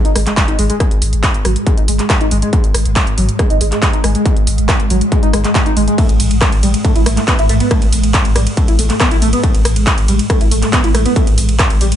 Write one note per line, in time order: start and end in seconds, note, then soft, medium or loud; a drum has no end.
0.00 11.96 G#2 medium
0.00 11.96 G#3 medium
0.00 sub drop medium
0.05 0.15 G#1 medium
0.05 0.09 D#4 medium
0.05 closed hi-hat medium
0.16 0.26 G#1 loud
0.16 0.18 G#3 medium
0.16 cross-stick medium
0.16 open hi-hat loud
0.27 0.31 G#3 medium
0.27 clap soft
0.27 closed hi-hat medium
0.37 0.42 G#3 medium
0.37 kick loud
0.37 clap loud
0.37 closed hi-hat medium
0.48 0.58 G#1 medium
0.48 0.52 D#4 loud
0.48 closed hi-hat medium
0.59 0.69 G#1 loud
0.59 0.63 G#3 loud
0.59 open hi-hat medium
0.70 0.76 G#3 loud
0.70 closed hi-hat medium
0.80 0.87 G#3 medium
0.80 kick loud
0.80 cross-stick medium
0.80 closed hi-hat medium
0.91 1.01 G#1 medium
0.91 closed hi-hat medium
1.02 1.12 G#1 loud
1.02 open hi-hat loud
1.13 1.23 G#1 medium
1.13 closed hi-hat medium
1.23 kick loud
1.23 clap loud
1.23 closed hi-hat medium
1.34 1.44 G#1 medium
1.34 closed hi-hat medium
1.45 1.56 G#1 loud
1.45 1.50 F#3 medium
1.45 cross-stick medium
1.45 open hi-hat loud
1.56 closed hi-hat medium
1.67 1.73 G#3 medium
1.67 kick loud
1.67 closed hi-hat medium
1.78 1.88 G#1 medium
1.78 1.82 D#4 medium
1.78 closed hi-hat medium
1.88 1.99 G#1 loud
1.88 1.91 G#3 medium
1.88 open hi-hat loud
1.99 2.04 G#3 medium
1.99 clap soft
1.99 closed hi-hat medium
2.10 2.14 G#3 medium
2.10 kick loud
2.10 cross-stick medium
2.10 clap loud
2.10 closed hi-hat medium
2.21 2.31 G#1 medium
2.21 2.25 D#4 loud
2.21 closed hi-hat medium
2.31 2.42 G#1 loud
2.31 2.36 G#3 loud
2.31 open hi-hat loud
2.42 2.49 G#3 loud
2.42 closed hi-hat medium
2.53 2.60 G#3 medium
2.53 kick loud
2.53 closed hi-hat medium
2.64 2.74 G#1 medium
2.64 closed hi-hat medium
2.74 2.85 G#1 loud
2.74 cross-stick medium
2.74 open hi-hat loud
2.85 2.96 G#1 medium
2.85 closed hi-hat medium
2.96 kick loud
2.96 clap loud
2.96 closed hi-hat medium
3.07 3.17 G#1 medium
3.07 closed hi-hat medium
3.18 3.28 G#1 loud
3.18 3.22 F#3 medium
3.18 open hi-hat loud
3.29 closed hi-hat medium
3.39 3.46 G#3 medium
3.39 kick loud
3.39 cross-stick medium
3.39 closed hi-hat medium
3.50 3.60 G#1 medium
3.50 3.55 D#4 medium
3.50 closed hi-hat medium
3.61 3.72 G#1 loud
3.61 3.64 G#3 medium
3.61 open hi-hat loud
3.72 3.76 G#3 medium
3.72 clap soft
3.72 closed hi-hat medium
3.82 3.87 G#3 medium
3.82 kick loud
3.82 clap loud
3.82 closed hi-hat medium
3.93 4.03 G#1 medium
3.93 3.98 D#4 loud
3.93 closed hi-hat medium
4.04 4.15 G#1 loud
4.04 4.09 G#3 loud
4.04 cross-stick medium
4.04 open hi-hat loud
4.15 4.22 G#3 loud
4.15 closed hi-hat medium
4.26 4.32 G#3 medium
4.26 kick loud
4.26 closed hi-hat medium
4.37 4.47 G#1 medium
4.37 closed hi-hat medium
4.47 4.58 G#1 loud
4.47 open hi-hat loud
4.58 4.69 G#1 medium
4.58 closed hi-hat medium
4.69 kick loud
4.69 cross-stick loud
4.69 clap loud
4.69 closed hi-hat medium
4.80 4.90 G#1 medium
4.80 closed hi-hat medium
4.90 5.01 G#1 loud
4.90 4.95 F#3 medium
4.90 open hi-hat loud
5.01 closed hi-hat medium
5.12 5.19 G#3 medium
5.12 kick loud
5.12 closed hi-hat medium
5.23 5.33 G#1 medium
5.23 5.27 D#4 medium
5.23 closed hi-hat medium
5.33 5.44 G#1 loud
5.33 5.36 G#3 medium
5.33 cross-stick loud
5.33 open hi-hat loud
5.44 5.49 G#3 medium
5.44 clap soft
5.44 closed hi-hat medium
5.55 5.60 G#3 medium
5.55 kick loud
5.55 clap loud
5.55 closed hi-hat medium
5.66 5.76 G#1 medium
5.66 5.70 D#4 loud
5.66 closed hi-hat medium
5.77 5.87 G#1 loud
5.77 5.81 G#3 loud
5.77 open hi-hat medium
5.88 5.94 G#3 loud
5.88 closed hi-hat medium
5.98 6.05 A3 medium
5.98 kick loud
5.98 closed hi-hat medium
5.98 ride medium
6.09 6.19 A1 medium
6.09 closed hi-hat medium
6.09 ride medium
6.20 6.30 A1 loud
6.20 open hi-hat loud
6.20 ride medium
6.31 6.41 A1 medium
6.31 closed hi-hat medium
6.31 ride medium
6.41 kick loud
6.41 cross-stick loud
6.41 clap loud
6.41 closed hi-hat medium
6.41 ride medium
6.52 6.62 A1 medium
6.52 closed hi-hat medium
6.52 ride medium
6.63 6.74 A1 loud
6.63 6.68 G3 medium
6.63 open hi-hat medium
6.63 ride medium
6.74 closed hi-hat medium
6.74 ride medium
6.85 6.91 A3 medium
6.85 kick loud
6.85 closed hi-hat medium
6.85 ride medium
6.96 7.06 A1 medium
6.96 7.00 E4 medium
6.96 closed hi-hat medium
6.96 ride medium
7.06 7.17 A1 loud
7.06 7.09 A3 medium
7.06 cross-stick loud
7.06 open hi-hat loud
7.06 ride medium
7.17 7.22 A3 medium
7.17 clap soft
7.17 closed hi-hat medium
7.17 ride medium
7.28 7.32 B3 medium
7.28 kick loud
7.28 clap loud
7.28 closed hi-hat medium
7.28 ride medium
7.39 7.49 A1 medium
7.39 7.43 E4 loud
7.39 closed hi-hat soft
7.39 ride medium
7.49 7.60 A1 loud
7.49 7.54 A3 loud
7.49 open hi-hat medium
7.49 ride medium
7.60 7.67 B3 loud
7.60 closed hi-hat medium
7.60 ride medium
7.71 7.78 A3 medium
7.71 kick loud
7.71 cross-stick loud
7.71 closed hi-hat medium
7.71 ride medium
7.82 7.92 A1 medium
7.82 closed hi-hat medium
7.82 ride medium
7.93 8.03 A1 loud
7.93 open hi-hat loud
7.93 ride medium
8.04 8.14 A1 medium
8.04 closed hi-hat medium
8.04 ride medium
8.14 kick loud
8.14 clap loud
8.14 closed hi-hat medium
8.14 ride medium
8.25 8.35 A1 medium
8.25 closed hi-hat medium
8.25 ride medium
8.36 8.46 A1 loud
8.36 8.40 G3 medium
8.36 cross-stick loud
8.36 open hi-hat medium
8.36 ride medium
8.47 closed hi-hat medium
8.47 ride medium
8.57 8.64 A3 medium
8.57 kick loud
8.57 closed hi-hat medium
8.57 ride medium
8.68 8.78 A1 medium
8.68 8.73 E4 medium
8.68 closed hi-hat medium
8.68 ride medium
8.79 8.90 A1 loud
8.79 8.82 A3 medium
8.79 open hi-hat loud
8.79 ride medium
8.90 8.94 A3 medium
8.90 clap soft
8.90 closed hi-hat medium
8.90 ride medium
9.00 9.05 B3 medium
9.00 kick loud
9.00 cross-stick loud
9.00 clap loud
9.00 closed hi-hat medium
9.00 ride medium
9.11 9.21 A1 medium
9.11 9.16 E4 loud
9.11 closed hi-hat soft
9.11 ride medium
9.22 9.33 A1 loud
9.22 9.27 A3 loud
9.22 open hi-hat medium
9.22 ride medium
9.33 9.40 B3 loud
9.33 closed hi-hat medium
9.33 ride medium
9.44 9.50 A3 medium
9.44 kick loud
9.44 closed hi-hat medium
9.44 ride medium
9.55 9.65 A1 medium
9.55 closed hi-hat medium
9.55 ride medium
9.65 9.76 A1 loud
9.65 cross-stick loud
9.65 open hi-hat loud
9.65 ride medium
9.76 9.87 A1 medium
9.76 closed hi-hat medium
9.76 ride medium
9.87 kick loud
9.87 clap loud
9.87 closed hi-hat medium
9.87 ride medium
9.98 10.08 A1 medium
9.98 closed hi-hat medium
9.98 ride medium
10.08 10.19 A1 loud
10.08 10.13 G3 medium
10.08 open hi-hat medium
10.08 ride medium
10.19 closed hi-hat medium
10.19 ride medium
10.30 10.37 A3 medium
10.30 kick loud
10.30 cross-stick loud
10.30 closed hi-hat medium
10.30 ride medium
10.41 10.51 A1 medium
10.41 10.45 E4 medium
10.41 closed hi-hat medium
10.41 ride medium
10.51 10.62 A1 loud
10.51 10.54 A3 medium
10.51 open hi-hat loud
10.51 ride medium
10.62 10.67 A3 medium
10.62 clap soft
10.62 closed hi-hat medium
10.62 ride medium
10.73 10.78 B3 medium
10.73 kick loud
10.73 clap loud
10.73 closed hi-hat medium
10.73 ride medium
10.84 10.94 A1 medium
10.84 10.88 E4 loud
10.84 closed hi-hat medium
10.84 ride medium
10.95 11.05 A1 loud
10.95 10.99 A3 loud
10.95 cross-stick medium
10.95 open hi-hat medium
10.95 ride medium
11.06 11.12 B3 loud
11.06 closed hi-hat medium
11.06 ride medium
11.16 11.23 A3 medium
11.16 kick loud
11.16 closed hi-hat medium
11.16 ride medium
11.27 11.37 A1 medium
11.27 closed hi-hat medium
11.27 ride medium
11.38 11.48 A1 loud
11.38 open hi-hat loud
11.38 ride medium
11.49 11.59 A1 medium
11.49 closed hi-hat medium
11.49 ride medium
11.59 kick loud
11.59 cross-stick medium
11.59 clap loud
11.59 closed hi-hat medium
11.59 ride medium
11.70 11.80 A1 medium
11.70 closed hi-hat medium
11.70 ride medium
11.81 11.92 A1 loud
11.81 11.86 G3 medium
11.81 open hi-hat medium
11.81 ride medium
11.92 closed hi-hat medium
11.92 ride medium